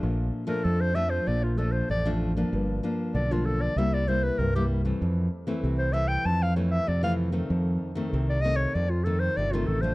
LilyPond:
<<
  \new Staff \with { instrumentName = "Clarinet" } { \time 4/4 \key f \major \tempo 4 = 96 r8. bes'16 a'16 c''16 e''16 c''16 d''16 f'16 a'16 c''16 d''8 r8 | r4 d''16 f'16 a'16 d''16 e''16 d''16 c''16 b'16 bes'16 g'16 r8 | r4 r16 c''16 e''16 g''16 a''16 f''16 des''16 e''16 d''16 f''16 r8 | r4 r16 d''16 ees''16 des''16 d''16 f'16 a'16 c''16 d''16 f'16 a'16 c''16 | }
  \new Staff \with { instrumentName = "Nylon-string guitar" } { \time 4/4 \key f \major << { <f a d'>8. <f a d'>8. <f a d'>4 <f a d'>8 r16 <f a d'>8 <f bes d'>16~ | <f bes d'>8 <f bes d'>8. <f bes d'>8. <g bes e'>8 <g bes e'>8. <g bes e'>8 <e a c'>16~ | <e a c'>8 r16 <e a c'>8. <e a c'>4 <e a c'>8 r16 <e a c'>8 <ees a c'>16~ | <ees a c'>8. <ees a c'>8. <ees a c'>8. r16 <ees a c'>8. <ees a c'>8 <f a d'>16 | } \\ { bes,4 f,4 bes,4 f,4 | g,4 d4 c4 g,4 | f,4 c4 f,4 c4 | f,4 c4 f,4 c4 | } >> }
  \new Staff \with { instrumentName = "Fingered electric bass" } { \clef bass \time 4/4 \key f \major bes,,8 r8 f,4 bes,,4 a,,4 | g,,8 r8 b,,4 c,4 c,4 | f,8 r8 c,4 f,4 f,4 | f,8 r8 c,4 f,4 g,,8 a,,8 | }
>>